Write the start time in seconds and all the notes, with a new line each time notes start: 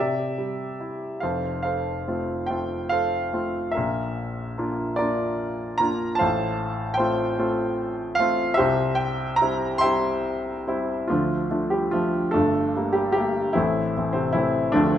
Already playing: C3 G4 D5 E5
0.38 G3
0.80 E4
1.20 F1 F2 A4 C5 F5
1.63 A4 C5 F5
2.08 A3 C4 F4
2.46 A3 C4 G5
2.50 F4
2.89 A4 C5 F5
3.33 A3 C4 F4
3.71 A#4 E5
3.77 A#1 A#2
4.58 A#3 D4 F4
4.96 A#3 F4 A#4 D5
5.00 D4
5.78 A#3 D4 F4 A#5
6.15 C5 F5 A5
6.21 A1 A2
6.94 C5 G5
6.99 A3 C4 F4
7.39 A3 C4 F4
8.15 F5
8.19 A3 C4 F4
8.54 G4 C5 E5
8.59 C2 C3
8.95 G5
9.36 A#5
9.41 G3 C4 E4
9.78 E5 G5 C6
9.84 G3 C4 E4
10.68 G3 C4 E4
11.08 D2 D3 F3 A3 D4 F4
11.51 A3 D4 F4
11.70 G3 G4
11.91 F3 A3 D4 F4
12.31 G1 A3 D4 A4
12.35 G2
12.77 G3 A3 A#3
12.93 G3 G4
13.12 G3 G4
13.17 A3 A#3
13.53 A2 E3 A3 C4 E4
13.57 A1
13.97 E3 A3 C4
14.13 C3 C4
14.33 E3 A3 E4
14.37 C4
14.72 D1 D3 F3 A3 D4
14.76 D2